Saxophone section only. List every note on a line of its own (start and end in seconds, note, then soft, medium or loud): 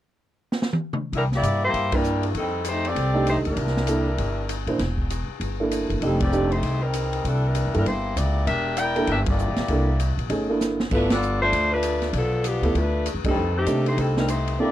1.15 1.24 G3 medium
1.15 1.23 D4 medium
1.15 1.23 E4 medium
1.15 1.23 A#4 medium
1.35 1.62 A#3 medium
1.35 1.62 E4 medium
1.35 1.62 G4 medium
1.35 1.62 D5 medium
1.65 1.92 A#3 medium
1.65 1.93 E4 medium
1.65 1.92 G4 medium
1.65 1.92 C5 medium
1.93 2.23 G3 medium
1.93 2.24 D4 medium
1.93 2.24 E4 medium
1.93 2.24 A#4 medium
2.37 2.65 G3 medium
2.37 2.65 C4 medium
2.37 2.65 D#4 medium
2.37 2.65 A4 medium
2.69 2.86 A3 medium
2.69 2.86 D#4 medium
2.69 2.86 G4 medium
2.69 2.86 C5 medium
2.87 3.28 C4 medium
2.87 3.28 G4 medium
2.87 3.28 A4 medium
2.87 3.28 D5 loud
3.29 3.38 A3 medium
3.29 3.38 D#4 medium
3.29 3.37 G4 medium
3.29 3.38 C5 medium
3.48 4.65 G3 medium
3.48 4.65 D4 medium
3.48 4.65 E4 medium
3.48 4.65 A#4 medium
6.02 6.19 G3 medium
6.02 6.20 C4 medium
6.02 6.19 D#4 medium
6.02 6.19 A4 medium
6.22 6.50 C4 medium
6.22 6.50 G4 medium
6.22 6.50 A4 medium
6.22 6.50 D5 medium
6.51 6.82 A3 medium
6.51 6.81 D#4 medium
6.51 6.82 G4 medium
6.51 6.82 C5 medium
6.82 7.24 G3 medium
6.82 7.24 C4 medium
6.82 7.24 D#4 medium
6.82 7.24 A#4 medium
7.26 7.44 G3 medium
7.26 7.44 D4 medium
7.26 7.44 E4 medium
7.26 7.45 A4 medium
7.45 7.75 G3 medium
7.45 7.75 D4 medium
7.45 7.75 E4 medium
7.45 7.75 A#4 medium
7.76 7.86 G3 medium
7.76 7.86 D4 medium
7.76 7.85 E4 medium
7.76 7.86 A#4 medium
7.86 8.17 A#3 medium
7.86 8.16 E4 medium
7.86 8.17 G4 medium
7.86 8.16 C5 medium
8.17 8.47 A#3 medium
8.17 8.47 E4 medium
8.17 8.45 G4 medium
8.17 8.48 D5 medium
8.46 8.75 D4 medium
8.46 8.75 G4 medium
8.46 8.75 A#4 medium
8.46 8.75 E5 loud
8.78 9.08 E4 medium
8.78 9.08 A#4 medium
8.78 9.08 D5 medium
8.78 9.08 G5 loud
9.10 9.18 D4 medium
9.10 9.19 G4 medium
9.10 9.18 A#4 medium
9.10 9.19 E5 medium
9.30 10.16 A#3 medium
9.30 10.16 E4 medium
9.30 10.17 G4 medium
9.30 10.16 D5 medium
10.94 11.11 A3 medium
10.94 11.11 D4 medium
10.94 11.11 F4 medium
10.94 11.11 B4 medium
11.12 11.40 B3 medium
11.12 11.40 F4 medium
11.12 11.40 A4 medium
11.12 11.40 D5 loud
11.42 11.70 A3 medium
11.42 11.70 D4 medium
11.42 11.71 F4 medium
11.42 11.70 C5 loud
11.73 12.12 A3 medium
11.73 12.12 D4 medium
11.73 12.12 F4 medium
11.73 12.12 B4 medium
12.16 12.44 F3 medium
12.16 12.45 B3 medium
12.16 12.45 D4 medium
12.16 12.46 A4 medium
12.45 12.76 F3 medium
12.45 12.76 B3 medium
12.45 12.75 D4 medium
12.45 12.76 G4 medium
12.77 13.07 A3 medium
12.77 13.07 D4 medium
12.77 13.07 F4 medium
12.77 13.07 B4 medium
13.27 13.55 G3 medium
13.27 13.55 C4 medium
13.27 13.55 D#4 medium
13.27 13.55 A4 medium
13.57 13.85 D#3 medium
13.57 13.85 A3 medium
13.57 13.85 C4 medium
13.57 13.85 G4 medium
13.88 13.99 A3 medium
13.88 13.98 D#4 medium
13.88 13.99 G4 medium
13.88 13.99 C5 medium
13.99 14.16 G3 medium
13.99 14.16 C4 medium
13.99 14.16 D#4 medium
13.99 14.16 A4 medium
14.18 14.28 G3 medium
14.18 14.29 C4 medium
14.18 14.28 D#4 medium
14.18 14.28 A#4 medium
14.29 14.57 A3 medium
14.29 14.57 D#4 medium
14.29 14.57 G4 medium
14.29 14.57 C5 medium
14.61 14.72 A#3 medium
14.61 14.72 E4 medium
14.61 14.72 G4 medium
14.61 14.72 D5 medium